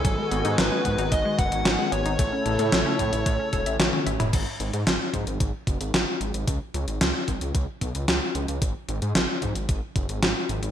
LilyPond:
<<
  \new Staff \with { instrumentName = "Lead electric guitar" } { \time 4/4 \key cis \minor \tempo 4 = 112 a'4 b'4 dis''8 fis''4 cis''8~ | cis''2. r4 | r1 | r1 |
r1 | }
  \new Staff \with { instrumentName = "Analog synth pad" } { \time 4/4 \key cis \minor <dis b fis' gis''>1 | <cis a e' a'>1 | r1 | r1 |
r1 | }
  \new Staff \with { instrumentName = "Synth arpeggio sound" } { \time 4/4 \key cis \minor fis16 gis16 b16 dis'16 fis16 gis16 b16 dis'16 fis16 gis16 b16 dis'16 fis16 gis16 b16 dis'16 | a16 cis'16 e'16 a'16 a16 cis'16 e'16 a'16 a16 cis'16 a'16 e''16 cis''16 cis'16 e''16 e'16 | r1 | r1 |
r1 | }
  \new Staff \with { instrumentName = "Detuned saw bass" } { \clef bass \time 4/4 \key cis \minor gis,,16 r16 gis,,16 gis,16 gis,,16 r16 gis,16 gis,,16 gis,,16 r16 fis,,16 gis,,16 gis,,16 r16 gis,,16 gis,,16 | a,,16 r16 a,,16 a,16 a,,16 r16 a,16 a,,16 a,,16 r16 e,,16 a,,16 a,,16 r16 a,,16 e,,16 | gis,,16 r16 gis,,16 gis,16 gis,,16 r16 gis,16 gis,,16 gis,,16 r16 fis,,16 gis,,16 gis,,16 r16 gis,,16 gis,,16 | cis,16 r16 cis,16 gis,,16 cis,16 r16 gis,,16 cis,16 cis,16 r16 b,,16 cis,16 cis,16 r16 cis,16 cis,16 |
gis,,16 r16 gis,,16 gis,16 gis,,16 r16 gis,16 gis,,16 gis,,16 r16 fis,,16 gis,,16 gis,,16 r16 gis,,16 gis,,16 | }
  \new DrumStaff \with { instrumentName = "Drums" } \drummode { \time 4/4 <hh bd>8 hh16 hh16 <hh sn>8 <hh bd>16 hh16 <hh bd>8 <hh bd>16 hh16 <hh sn>8 hh16 hh16 | <hh bd>8 hh16 hh16 <hh sn>8 <hh bd>16 hh16 <hh bd>8 <hh bd>16 hh16 <hh sn tommh>16 tommh16 hh16 <hh toml>16 | <cymc hh bd>8 hh16 hh16 <hh sn>8 <hh bd>16 hh16 <hh bd>8 <hh bd>16 hh16 <hh sn>8 hh16 hh16 | <hh bd>8 hh16 hh16 <hh sn>8 <hh bd>16 hh16 <hh bd>8 <hh bd>16 hh16 <hh sn>8 hh16 hh16 |
<hh bd>8 hh16 hh16 <hh sn>8 <hh bd>16 hh16 <hh bd>8 <hh bd>16 hh16 <hh sn>8 hh16 hh16 | }
>>